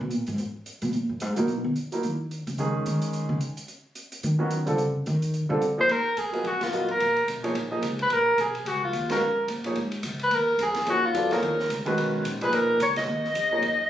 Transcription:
0.01 B2
0.11 A#2, closed hi-hat
0.27 G#2, closed hi-hat
0.38 F#2, closed hi-hat
0.66 closed hi-hat
0.82 B2, closed hi-hat
0.93 A#2, closed hi-hat
1.09 F#2
1.20 G#2, closed hi-hat
1.36 A#2 F#3 A#3 D#4 E4 A#4, closed hi-hat
1.48 B2, closed hi-hat
1.64 D#3
1.76 closed hi-hat
1.92 F#3 A#3 D#4 E4 A#4, closed hi-hat
2.03 D#3, closed hi-hat
2.31 closed hi-hat
2.47 C#3, closed hi-hat
2.58 D#3 G#3 C#4 D#4 G#4, closed hi-hat
2.86 D#3, closed hi-hat
3.02 closed hi-hat
3.13 closed hi-hat
3.29 C#3
3.41 closed hi-hat
3.57 closed hi-hat
3.68 closed hi-hat
3.95 closed hi-hat
4.12 closed hi-hat
4.23 D#3, closed hi-hat
4.39 D#3 F#3 B3 C#4 F#4
4.51 closed hi-hat
4.66 C#3 D3 G3 C4 F4 A4, closed hi-hat
4.78 closed hi-hat
5.06 D#3, closed hi-hat
5.22 closed hi-hat
5.34 closed hi-hat
5.49 C3 D3 G3 C4 F4 A4
5.62 closed hi-hat
5.77 F3 A#3 D#4 G#4 C5 D#5
5.89 A#2 A#4, ride
6.05 muted upright bass stroke
6.17 F#2 G#4, hi-hat pedal, ride
6.32 F#3 B3 F4 A#4 D#5, ride
6.44 F2 F#4, ride
6.61 F4, snare, ride
6.72 A#1 F#3 B3 F4 A#4 D#5, hi-hat pedal
6.88 A#4, ride
6.99 A#1, ride
7.16 ride
7.27 B1, hi-hat pedal, ride
7.43 F3 A#3 D#4 G#4 C#5, ride
7.54 A#1, ride
7.71 F3 A#3 D#4 G#4 D#5
7.82 C#2, hi-hat pedal, ride
7.99 B4, ride
8.10 A#1 A#4, ride
8.38 B1 G#4, hi-hat pedal, ride
8.55 ride
8.65 C#2 F#4, ride
8.82 F4, kick
8.92 D#2, hi-hat pedal, ride
9.09 G#3 C#4 F#4 A#4 B4 F5, snare, ride
9.20 F2
9.37 muted upright bass stroke, kick
9.48 A#2, hi-hat pedal, ride
9.64 F3 A#3 D#4 G#4 C#5, ride
9.75 G#2, ride
9.92 ride
10.03 C#2, hi-hat pedal, ride
10.19 B4, ride
10.30 D#2 A#4, ride
10.58 F2, hi-hat pedal, ride
10.62 G#4
10.74 snare, ride
10.86 F#2 F3 A#3 D#4 F#4 G#4 C#5, ride
11.05 F4
11.13 F2 F#3 B3 E4 A4 D5, hi-hat pedal, ride
11.31 F3 A#3 D#4 G#4 A#4 C#5, snare, ride
11.41 D#2, ride
11.59 snare
11.69 C#2, hi-hat pedal, ride
11.85 D#3 G#3 C#4 F#4 B4, muted upright bass stroke, ride
11.96 B1, ride
12.23 A#1, hi-hat pedal, ride
12.41 A#2 F3 D#4 G#4 B4, ride
12.51 B1 A#4, ride
12.79 C#2 C#5, hi-hat pedal, ride
12.96 D#5, snare, ride
13.06 D#2
13.24 snare
13.33 F2, hi-hat pedal, ride
13.51 F3 A#3 D#4 G#4 C#5
13.61 F#2, ride

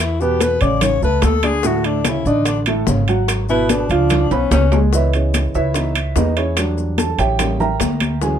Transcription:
Already playing: E2 E3 E4 E5
0.00 E4, high bongo, high conga, claves, maracas
0.20 B2 B3 G4 B4, high bongo, high conga, maracas
0.40 B4, high bongo, high conga, high timbale, maracas
0.61 A1 C#3 C#4 C#5 D5, high bongo, high conga, high timbale, maracas
0.81 C#5, high bongo, high conga, low conga, high timbale, claves, maracas
1.02 C#2 A3 A4 B4 A5, high conga, maracas
1.22 D2 A4, high bongo, low bongo, high conga, high timbale, low timbale, maracas
1.43 D3 D4 G#4 D5, high bongo, high conga, high timbale, claves, maracas
1.63 A2 A3 F#4 A4, high bongo, high conga, maracas
1.84 D4, high conga, high timbale, maracas
2.04 C#3 C#4 E4 C#5, high bongo, high conga, high timbale, claves, maracas
2.25 A1 D3 D4 D#4 D5, high conga, maracas
2.45 D4, high bongo, high conga, high timbale, maracas
2.66 A2 A3 A4, high conga, high timbale, claves, maracas
2.87 G#1 C#3 C#4 C#5, high bongo, low bongo, high conga, maracas
3.08 F#3 F#4 F#5, high timbale, maracas
3.28 high bongo, high conga, high timbale, claves, maracas
3.49 B2 B3 E4 B4, high bongo, high conga, maracas
3.69 D4, high bongo, high conga, high timbale, maracas
3.89 C#2 F3 F4 F5, high bongo, high conga, high timbale, maracas
4.10 high bongo, high conga, low conga, high timbale, claves, maracas
4.31 B1 B3 C#4 B4 B5, high conga, high timbale, maracas
4.51 C#2 C#4, high bongo, low bongo, high conga, low timbale, maracas
4.72 G#3 G#4 G#5, high bongo, high conga, low timbale, claves, maracas
4.93 E3 B3 E4 B4 C#5 D#5 E5, high bongo, high conga, maracas
5.13 C#4 E4 G#4 C#5, high conga, high timbale, maracas
5.34 high bongo, high conga, high timbale, claves, maracas
5.54 C#2 E4 B4 C#5 E5, high conga, maracas
5.74 E3 B3 D#4, high bongo, high conga, high timbale, maracas
5.95 high conga, high timbale, claves, maracas
6.16 E2 D#4 G#4 B4 D#5, high bongo, low bongo, high conga, low timbale, maracas
6.37 C#4 E4 G#4 C#5, high timbale, maracas
6.57 F#3 G3 D4, high bongo, high conga, high timbale, claves, maracas
6.77 high bongo, high conga, maracas
6.98 A4 A5, high bongo, high conga, high timbale, maracas
7.18 A1 G4 C#5 E5 G5, high bongo, high conga, high timbale, maracas
7.39 G3 A#3 C#4, high bongo, high conga, low conga, high timbale, claves, maracas
7.60 A#4 E5 G5 A#5, high conga, low conga, maracas
7.80 D2, high bongo, low bongo, high conga, high timbale, low timbale, maracas
8.00 high bongo, high conga, high timbale, claves, maracas
8.21 E3 F#3 C#4 G#4 G#5, high bongo, maracas

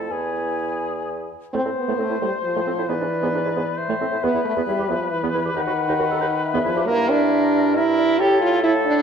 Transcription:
Already playing: F2 A3 A4 A5
0.10 E2 B3 E4 G#4 G#5
1.53 A2 A3 C4 C5
1.65 A2 C4
1.76 B3
1.88 A2 A3
1.99 A2 A3 C4
2.10 A2 E4
2.21 A2 G3 A3
2.44 F3
2.55 A2 A3
2.67 A2 C4
2.78 A2 E4
2.88 G#2 E3 B3 B4 D5
3.00 G#2 D4
3.22 G#2 B3
3.33 G#2 D4
3.45 G#2 E4
3.56 G#2 B3
3.77 C5 E5
3.89 A2 A3
4.01 A2 C4
4.11 A2 E4
4.23 E2 B3 B4
4.34 E2 E4
4.45 A3
4.56 E2 B3
4.67 E2 G3 E4
4.78 E2 G4
4.89 E2 F3 B3
5.12 E3
5.23 E2 B3
5.34 E2 E4
5.45 E2 G4
5.54 D#2 D#3 D#4 F#5
5.66 D#2 F#4
5.88 D#2 D#4
5.99 D#2 F#4
6.11 D#2 A4
6.21 D#2 D#4
6.45 E5
6.54 E2 B3
6.65 E2 F3 E4
6.76 E2 G4
6.87 G2 A#3 E4 A#4 E5
7.10 D4
7.76 E4 A#4 E5
7.98 D5
8.19 A2 E4 G4 A4 C#5
8.41 F4
8.63 E4 A4 C#5
8.86 D4

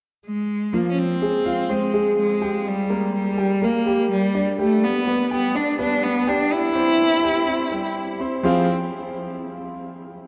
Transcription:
0.26 G#3
0.73 F3 A#3 F4
0.91 C#4
0.99 C4
1.22 G#3 G#4
1.45 F4 F5
1.69 G#3 C4 C5
1.93 G#3 G#4
2.19 G#3
2.41 G4 G5
2.68 G3
2.90 A#3 A#4
3.15 G3
3.37 G4 G5
3.62 A#3 A#4
3.86 G3 G4
4.11 G3
4.34 D4 D5
4.59 G3 A3 G4
4.83 B3
5.07 B3 B4
5.31 B3 G4 G5
5.55 D4 D5
5.79 B3 D4 B4
6.03 B3
6.27 D4 G4 G5
6.52 E4
6.75 C4 C5
7.23 G4 G5
7.47 C4 C5
7.72 G3 G4
8.20 C4 C5
8.43 F3 C4 F4 G#4 C5 F5

